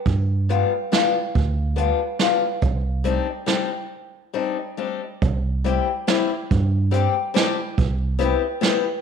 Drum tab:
HH |x-x-x-|x-x-x-|x-x-x-|------|
SD |----o-|----o-|----o-|------|
BD |o-----|o-----|o-----|------|

HH |x-x-x-|x-x-x-|x-x-x-|
SD |----o-|----o-|----o-|
BD |o-----|o-----|o-----|